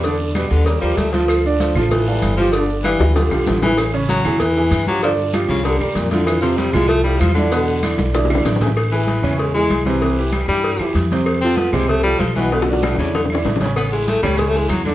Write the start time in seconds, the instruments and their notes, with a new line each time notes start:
Already playing: upright bass E2
0.03 upright piano D3 D4 D5, baritone saxophone D3, cowbell, high conga, long guiro, maracas
0.19 baritone saxophone F#2, high conga, maracas
0.35 baritone saxophone B2, upright piano G3 G4 B4, cowbell, high conga, short guiro, claves, maracas
0.50 upright bass D#2, baritone saxophone D3, high conga, short guiro, maracas
0.66 baritone saxophone C#3, upright piano G3 G4 A#4, cowbell, high conga, long guiro, maracas
0.81 upright bass D#2, baritone saxophone F3, upright piano G3 G4 A#4, high conga, claves, maracas
0.96 upright bass D2, baritone saxophone A3, cowbell, high conga, short guiro, maracas
1.12 baritone saxophone F3, upright piano F3 F4 A4, cowbell, high conga, short guiro, maracas
1.28 cowbell, high conga, long guiro, claves, maracas
1.45 upright piano D3 D4 D5, high conga, maracas
1.60 baritone saxophone F3, cowbell, high conga, short guiro, maracas
1.75 upright bass A1, upright piano F3 F4 A4, high conga, low conga, short guiro, claves, maracas
1.91 baritone saxophone E3, cowbell, high conga, low conga, long guiro, maracas
2.07 upright piano G3 A4 F5, high conga, maracas
2.22 upright bass G1, cowbell, high conga, short guiro, claves, maracas
2.37 baritone saxophone F3, upright piano F3 F4 G4, high conga, short guiro, maracas
2.53 baritone saxophone D3, upright piano D3 D4 D5, cowbell, high conga, long guiro, maracas
2.69 high conga, maracas
2.84 baritone saxophone E3, upright piano G3 G4 F5, cowbell, high conga, short guiro, claves, maracas
2.99 upright bass D2, high bongo, high conga, short guiro, maracas
3.15 baritone saxophone D3, upright piano F3 F4 G4, cowbell, low bongo, high conga, long guiro, maracas
3.30 upright bass B1, upright piano F3 F4 G4, low bongo, high conga, claves, maracas
3.46 upright bass A1, cowbell, low bongo, high conga, short guiro, maracas
3.62 baritone saxophone E3, upright piano E3 E4 G#4, cowbell, low bongo, high conga, short guiro, maracas
3.78 baritone saxophone C#3, cowbell, high conga, long guiro, claves, maracas
3.93 upright piano C#3 C#4 C#5, high conga, maracas
4.09 baritone saxophone F#3, cowbell, high conga, short guiro, maracas
4.25 upright bass E2, upright piano E3 E4 G#4, high conga, low conga, short guiro, claves, maracas
4.40 baritone saxophone E3, cowbell, high conga, low conga, long guiro, maracas
4.56 upright piano E3 E4 G#4, high conga, maracas
4.71 upright bass G2, cowbell, high conga, short guiro, claves, maracas
4.87 upright piano F3 F4 G4, baritone saxophone F#3, high conga, short guiro, maracas
5.02 upright piano D3 D4 D5, baritone saxophone F3, cowbell, high conga, maracas
5.18 high conga, maracas
5.33 upright piano F3 F4 G4, cowbell, high conga, short guiro, claves, maracas
5.49 upright bass C2, baritone saxophone C#3, high conga, short guiro, maracas
5.64 baritone saxophone D3, upright piano G3 G4 A#4, cowbell, high conga, long guiro, maracas
5.79 upright bass E2, baritone saxophone G2, upright piano G3 G4 A#4, high conga, claves, maracas
5.95 upright bass F2, baritone saxophone A#2, cowbell, high conga, short guiro, maracas
6.11 baritone saxophone D3, upright piano D3 E4 F4, cowbell, high conga, short guiro, maracas
6.26 baritone saxophone E3, cowbell, high conga, long guiro, claves, maracas
6.41 upright piano C3 C4 C5, baritone saxophone F3, high conga, maracas
6.57 baritone saxophone G3, cowbell, high conga, short guiro, maracas
6.72 upright bass C2, upright piano F3 E4 F4, baritone saxophone G#3, high conga, low conga, short guiro, claves, maracas
6.88 baritone saxophone A3, cowbell, high conga, long guiro, maracas
7.04 upright piano F3 E4 F4, baritone saxophone G3, high conga, maracas
7.20 upright bass E2, baritone saxophone F3, cowbell, high conga, short guiro, claves, maracas
7.35 baritone saxophone D3, upright piano D3 D4 E4, high conga, short guiro, maracas
7.51 upright piano B2 B3 B4, cowbell, long guiro, maracas
7.67 high conga, maracas
7.83 upright piano D3 D4 E4, cowbell, high conga, short guiro, claves, maracas
7.98 upright bass B1, high conga, short guiro, maracas
8.13 upright piano D3 D4 E4, cowbell, high bongo, low conga, long guiro, maracas
8.25 high bongo
8.30 upright piano D3 D4 E4, low conga, claves, maracas
8.35 low bongo
8.45 upright bass A1, cowbell, low bongo, low conga, short guiro, maracas
8.56 low bongo
8.61 upright piano E3 E4 G#4, cowbell, low conga, short guiro, maracas
8.67 low bongo
8.76 cowbell, high conga, long guiro, claves
8.92 baritone saxophone E3, upright piano E3 E4 G#4, high conga
9.07 cowbell, high conga, short guiro
9.22 upright bass E2, upright piano C#3 C#4 C#5, high conga, low conga, short guiro, claves
9.38 baritone saxophone G#3, cowbell, high conga, long guiro
9.54 upright piano E3 E4 G#4, baritone saxophone G#3, high conga
9.69 upright bass C2, cowbell, high conga, short guiro, claves
9.86 upright piano C3 C4 C5, baritone saxophone E3, high conga, short guiro
10.01 upright piano C3 C4 C5, cowbell, high conga, long guiro
10.18 upright piano E3 E4 G4
10.32 baritone saxophone G3, cowbell, high conga, short guiro, claves
10.48 upright bass G2, upright piano E3 E4 G4, baritone saxophone G3, high conga, short guiro
10.64 cowbell, high conga, long guiro
10.79 upright bass F#2, upright piano E3 E4 G4, high conga, claves
10.95 upright bass F2, cowbell, high conga, short guiro
11.11 upright piano C3 C4 C5, cowbell, high conga, short guiro
11.26 cowbell, high conga, long guiro, claves
11.41 upright piano F3 F4 A4, baritone saxophone C4, high conga
11.57 baritone saxophone B3, cowbell, high conga, short guiro
11.73 upright bass C2, upright piano C3 C4 C5, baritone saxophone G#3, high conga, low conga, short guiro, claves
11.88 baritone saxophone A3, cowbell, high conga, low conga, long guiro
12.03 upright piano F3 F4 A4, baritone saxophone G3, high conga
12.20 upright bass B1, baritone saxophone F3, cowbell, high conga, short guiro, claves
12.36 upright piano B2 B3 B4, baritone saxophone E3, high conga, short guiro
12.51 upright piano B2 B3 B4, baritone saxophone D3, cowbell, high bongo, high conga, long guiro
12.62 high bongo
12.67 baritone saxophone F#2, upright piano D3 D4 F#4, high conga
12.73 high bongo
12.82 baritone saxophone A2, cowbell, high bongo, high conga, short guiro, claves
12.94 upright bass E2, low bongo, high conga
12.99 baritone saxophone C#3, upright piano D3 D4 E4, short guiro
13.14 baritone saxophone D3, cowbell, low bongo, high conga, long guiro
13.25 low bongo
13.30 upright piano D3 D4 E4, high conga, claves
13.35 low bongo
13.45 upright bass A1, cowbell, low bongo, high conga, short guiro
13.56 low bongo
13.61 upright piano C#3 C#4 C#5, cowbell, high conga, short guiro
13.66 low bongo
13.76 baritone saxophone B3, cowbell, long guiro, claves, maracas
13.92 upright piano E3 E4 G#4, baritone saxophone G#3, high conga, maracas
14.07 baritone saxophone A3, cowbell, high conga, short guiro, maracas
14.23 upright bass C#2, upright piano C#3 C#4 C#5, baritone saxophone G3, high conga, low conga, short guiro, claves, maracas
14.37 baritone saxophone G#3, cowbell, high conga, low conga, long guiro, maracas
14.49 baritone saxophone A3
14.54 upright piano E3 E4 G#4, baritone saxophone G#3, high conga, maracas
14.69 upright bass E2, baritone saxophone F#3, cowbell, high conga, short guiro, claves, maracas
14.84 baritone saxophone D3, upright piano D3 D4 D5, high conga, short guiro, maracas